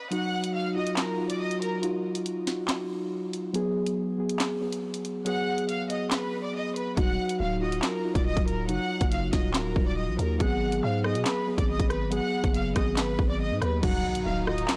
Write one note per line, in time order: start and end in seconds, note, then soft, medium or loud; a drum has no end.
0.11 0.66 F#3 loud
0.11 0.66 D#4 medium
0.11 0.67 F#4 loud
0.11 0.52 F#5 loud
0.11 0.52 F#6 medium
0.11 closed hi-hat medium
0.44 closed hi-hat medium
0.54 0.73 F5 medium
0.54 0.73 F6 medium
0.75 1.12 D#4 medium
0.75 1.12 F4 medium
0.75 1.13 F#4 medium
0.75 0.94 D#5 medium
0.75 0.95 D#6 medium
0.87 closed hi-hat medium
0.97 1.28 A#4 medium
0.97 1.28 A#5 medium
0.97 snare loud
0.97 clap loud
0.97 closed hi-hat medium
1.18 1.74 D#4 medium
1.18 1.73 F4 medium
1.18 1.74 F#4 medium
1.29 1.39 D5 medium
1.29 1.39 D6 medium
1.29 closed hi-hat medium
1.40 1.58 D#5 medium
1.40 1.59 D#6 medium
1.51 closed hi-hat medium
1.61 1.80 A#4 medium
1.61 1.80 A#5 medium
1.61 closed hi-hat medium
1.82 2.38 D#4 medium
1.82 2.37 F4 loud
1.82 2.38 F#4 loud
1.82 closed hi-hat medium
2.15 closed hi-hat medium
2.26 closed hi-hat medium
2.46 3.20 D#4 medium
2.46 3.20 F4 medium
2.46 3.21 F#4 medium
2.46 snare medium
2.46 closed hi-hat medium
2.68 snare loud
2.68 clap loud
2.68 closed hi-hat medium
3.33 closed hi-hat medium
3.53 4.09 F#3 loud
3.53 4.09 B3 medium
3.53 4.10 G#4 loud
3.53 closed hi-hat medium
3.86 closed hi-hat medium
4.18 4.55 F#3 medium
4.18 4.55 B3 medium
4.18 4.56 G#4 medium
4.29 closed hi-hat medium
4.40 snare loud
4.40 clap loud
4.40 closed hi-hat medium
4.61 5.16 F#3 medium
4.61 5.16 B3 medium
4.61 5.17 G#4 medium
4.72 closed hi-hat medium
4.94 closed hi-hat medium
5.05 closed hi-hat medium
5.25 5.80 F#3 loud
5.25 5.81 B3 medium
5.25 5.81 G#4 loud
5.25 5.66 F#5 loud
5.25 5.67 F#6 medium
5.25 closed hi-hat medium
5.58 closed hi-hat medium
5.69 5.87 F5 medium
5.69 5.88 F6 medium
5.69 closed hi-hat medium
5.89 6.63 F#3 medium
5.89 6.63 B3 medium
5.89 6.64 G#4 medium
5.89 6.08 D#5 medium
5.89 6.09 D#6 medium
5.89 closed hi-hat medium
6.11 6.42 B4 medium
6.11 6.42 B5 medium
6.11 snare loud
6.11 clap loud
6.11 closed hi-hat medium
6.44 6.53 D5 medium
6.44 6.53 D6 medium
6.54 6.73 D#5 medium
6.54 6.73 D#6 medium
6.76 6.94 B4 medium
6.76 6.95 B5 medium
6.76 closed hi-hat medium
6.96 7.18 D#1 loud
6.96 7.52 F#3 loud
6.96 7.52 D#4 medium
6.96 7.53 F#4 loud
6.96 7.37 F#5 loud
6.96 7.38 F#6 medium
6.96 kick loud
6.96 closed hi-hat medium
7.29 closed hi-hat medium
7.40 7.81 D1 loud
7.40 7.59 F5 medium
7.40 7.59 F6 medium
7.61 7.98 D#4 medium
7.61 7.98 F4 medium
7.61 7.99 F#4 medium
7.61 7.80 D#5 medium
7.61 7.80 D#6 medium
7.72 closed hi-hat medium
7.82 8.13 A#4 medium
7.82 8.14 A#5 medium
7.82 snare loud
7.82 clap loud
7.82 closed hi-hat medium
8.03 8.59 D#4 medium
8.03 8.59 F4 medium
8.03 8.60 F#4 medium
8.15 8.36 D#1 loud
8.15 8.24 D5 medium
8.15 8.25 D6 medium
8.15 kick loud
8.15 closed hi-hat medium
8.26 8.44 D#5 medium
8.26 8.45 D#6 medium
8.37 8.70 D1 loud
8.37 kick medium
8.37 closed hi-hat medium
8.47 8.66 A#4 medium
8.47 8.66 A#5 medium
8.47 closed hi-hat medium
8.68 8.79 F#1 loud
8.68 9.23 F#3 loud
8.68 9.24 D#4 medium
8.68 9.24 F#4 loud
8.68 9.09 F#5 loud
8.68 9.09 F#6 medium
8.68 closed hi-hat medium
9.01 9.32 F#1 loud
9.01 kick loud
9.01 closed hi-hat medium
9.11 9.30 F5 medium
9.11 9.30 F6 medium
9.11 closed hi-hat medium
9.32 9.56 D#1 loud
9.32 10.06 D#4 medium
9.32 10.06 F4 medium
9.32 10.07 F#4 medium
9.32 9.51 D#5 medium
9.32 9.52 D#6 medium
9.32 kick medium
9.32 snare medium
9.32 closed hi-hat medium
9.54 9.67 D1 loud
9.54 9.85 A#4 medium
9.54 9.85 A#5 medium
9.54 snare loud
9.54 clap loud
9.54 closed hi-hat medium
9.65 9.75 D#1 loud
9.76 10.10 D#1 loud
9.76 kick loud
9.86 9.96 D5 medium
9.86 9.96 D6 medium
9.97 10.16 D#5 medium
9.97 10.16 D#6 medium
10.08 10.18 A#1 loud
10.19 10.39 D#2 loud
10.19 10.37 A#4 medium
10.19 10.38 A#5 medium
10.19 closed hi-hat medium
10.39 10.81 G#1 loud
10.39 10.94 F#3 loud
10.39 10.95 B3 medium
10.39 10.95 G#4 loud
10.39 10.80 F#5 loud
10.39 10.81 F#6 medium
10.39 kick loud
10.39 closed hi-hat medium
10.72 closed hi-hat medium
10.83 11.17 G#2 loud
10.83 11.01 F5 medium
10.83 11.02 F6 medium
11.04 11.41 F#3 medium
11.04 11.41 B3 medium
11.04 11.42 G#4 medium
11.04 11.23 D#5 medium
11.04 11.23 D#6 medium
11.04 cross-stick loud
11.15 11.25 B2 loud
11.15 closed hi-hat medium
11.25 11.56 B4 medium
11.25 11.56 B5 medium
11.25 snare loud
11.25 clap loud
11.25 closed hi-hat medium
11.46 12.02 F#3 medium
11.46 12.02 B3 medium
11.46 12.03 G#4 medium
11.58 11.79 G#1 loud
11.58 11.67 D5 medium
11.58 11.68 D6 medium
11.58 kick medium
11.58 closed hi-hat medium
11.69 11.87 D#5 medium
11.69 11.88 D#6 medium
11.79 12.21 G#1 loud
11.79 kick medium
11.79 closed hi-hat medium
11.90 12.09 B4 medium
11.90 12.09 B5 medium
11.90 cross-stick medium
11.90 closed hi-hat medium
12.11 12.66 F#3 loud
12.11 12.66 B3 medium
12.11 12.67 G#4 loud
12.11 12.52 F#5 loud
12.11 12.52 F#6 medium
12.11 closed hi-hat medium
12.44 12.75 F#1 loud
12.44 kick loud
12.44 closed hi-hat medium
12.54 12.73 F5 medium
12.54 12.73 F6 medium
12.54 closed hi-hat medium
12.75 13.17 G#1 loud
12.75 13.48 F#3 medium
12.75 13.49 B3 medium
12.75 13.49 G#4 medium
12.75 12.94 D#5 medium
12.75 12.94 D#6 medium
12.75 kick medium
12.75 cross-stick loud
12.75 closed hi-hat medium
12.97 13.27 B4 medium
12.97 13.28 B5 medium
12.97 snare loud
12.97 clap loud
12.97 closed hi-hat medium
13.19 13.52 G#1 loud
13.19 kick loud
13.29 13.39 D5 medium
13.29 13.39 D6 medium
13.40 13.59 D#5 medium
13.40 13.59 D#6 medium
13.51 13.61 G#2 loud
13.61 13.82 D#2 loud
13.61 13.80 B4 medium
13.61 13.80 B5 medium
13.61 cross-stick medium
13.61 closed hi-hat medium
13.82 14.04 D#1 loud
13.82 14.77 D#3 medium
13.82 14.37 F#3 loud
13.82 14.77 F#3 medium
13.82 14.77 D#4 medium
13.82 14.38 D#4 loud
13.82 14.38 F#4 loud
13.82 14.23 F#5 loud
13.82 14.24 F#6 medium
13.82 kick loud
13.82 closed hi-hat medium
13.82 crash loud
13.82 impact medium
14.15 closed hi-hat medium
14.26 14.67 D1 loud
14.26 14.44 F5 medium
14.26 14.45 F6 medium
14.46 14.77 D#4 medium
14.46 14.77 F4 medium
14.46 14.77 F#4 medium
14.46 14.66 D#5 medium
14.46 14.66 D#6 medium
14.46 cross-stick loud
14.58 closed hi-hat medium
14.68 14.77 A#4 medium
14.68 14.77 A#5 medium
14.68 snare loud
14.68 clap loud
14.68 closed hi-hat medium